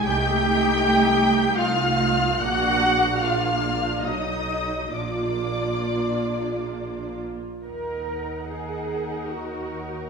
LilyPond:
<<
  \new Staff \with { instrumentName = "Violin section" } { \time 3/4 \key bes \phrygian \tempo 4 = 72 g'''2 f'''4 | ges'''4 f'''4 dis'''4 | d'''2~ d'''8 r8 | ges''2. | }
  \new Staff \with { instrumentName = "Violin section" } { \time 3/4 \key bes \phrygian g''2 f''4 | ges''4 f''4 dis''4 | d''2~ d''8 r8 | bes'2. | }
  \new Staff \with { instrumentName = "Cello section" } { \time 3/4 \key bes \phrygian g'2 f'4 | ges'4 f'4 dis'4 | d'2~ d'8 r8 | bes'4 aes'4 ges'4 | }
  \new Staff \with { instrumentName = "Viola section" } { \time 3/4 \key bes \phrygian <a ees'>2 <a ees'>4 | <bes d'>4 <bes d'>4 <fis dis'>4 | <bes f'>2~ <bes f'>8. r16 | ees'2. | }
  \new Staff \with { instrumentName = "Double bass section" } { \clef bass \time 3/4 \key bes \phrygian c,2. | bes,,2 b,,4 | bes,,2~ bes,,8. r16 | ees,2. | }
>>